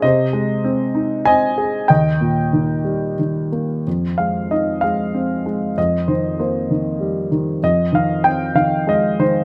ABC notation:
X:1
M:3/4
L:1/8
Q:1/4=96
K:Ebmix
V:1 name="Grand piano"
[ce]4 [ea]2 | [eg]4 z2 | [K:Fm] z f e f3 | e c c3 z |
e f g f e c |]
V:2 name="Grand piano" clef=bass
C, A, C E C A | E,, B,, E, G, E, B, | [K:Fm] F,, A, E A, C A, | F,, E, B, E, G, E, |
F,, E, C E, A, E, |]